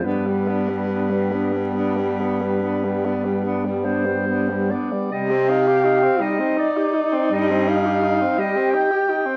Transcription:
X:1
M:12/8
L:1/16
Q:3/8=51
K:Gphr
V:1 name="Clarinet"
=B16- B2 c4 d2 | e2 f4 e2 d4 e2 f4 e2 g4 |]
V:2 name="Alto saxophone"
D =B, D B, D B, D B, D B, D B, D B, D B, D B, D B, D B, D B, | G6 E12 G6 |]
V:3 name="Tenor saxophone"
=B, G, B, G, B, G, B, G, B, G, B, G, B, G, B, G, B, G, B, G, B, G, B, G, | G, C E G E C G, C E G E C G, C E G E C G, C E G E C |]
V:4 name="Baritone saxophone" clef=bass
G,,16- G,,6 z2 | C,6 z6 G,,6 z6 |]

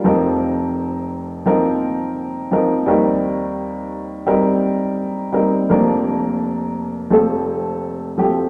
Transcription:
X:1
M:4/4
L:1/8
Q:1/4=85
K:Fmix
V:1 name="Upright piano"
[F,CEB]3 z [F,CEB]2 z [F,CEB] | [G,CEB]3 z [G,CEB]2 z [G,CEB] | [F,B,DB]3 z [F,A,CA]2 z [F,A,CG] |]
V:2 name="Upright piano" clef=bass
[F,,,F,,]8 | [E,,E,]8 | [F,,,F,,]4 [F,,,F,,]4 |]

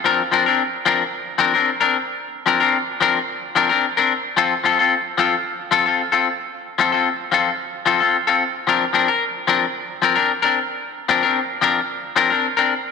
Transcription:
X:1
M:4/4
L:1/16
Q:1/4=111
K:Bb
V:1 name="Clean electric guitar"
[F,CDB] z [F,CDB] [CDB] z2 [F,CDB] z3 [F,CDB] [CDB] z [CDB] z2 | z2 [F,CDB] [CDB] z2 [F,CDB] z3 [F,CDB] [CDB] z [CDB] z2 | [F,CFA] z [F,CFA] [CFA] z2 [F,CFA] z3 [F,CFA] [CFA] z [CFA] z2 | z2 [F,CFA] [CFA] z2 [F,CFA] z3 [F,CFA] [CFA] z [CFA] z2 |
[F,CDB] z [F,CDB] B z2 [F,CDB] z3 [F,CB] [CDB] z [CDB] z2 | z2 [F,CDB] [CDB] z2 [F,CDB] z3 [F,CDB] [CDB] z [CDB] z2 |]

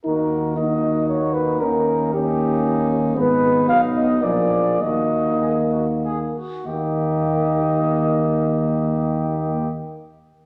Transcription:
X:1
M:3/4
L:1/8
Q:1/4=102
K:Abdor
V:1 name="Cornet"
B2 e2 d c | B2 =G3 z | c2 f e =d2 | e4 z2 |
e6- | e6 |]
V:2 name="Trumpet"
G2 G4 | E2 E4 | E4 A2 | G2 A G A G |
=G6- | =G6 |]
V:3 name="French horn"
E2 E4 | D2 D4 | C4 B,2 | B,4- B, z |
B,6- | B,6 |]
V:4 name="Trombone" clef=bass
B,2 B,4 | B,2 B,4 | A,2 G,2 F,2 | E,4- E, z |
E,6- | E,6 |]
V:5 name="Tuba" clef=bass
E,,6 | E,,6 | A,,,2 C,,2 B,,,2 | E,,4- E,, z |
E,,6- | E,,6 |]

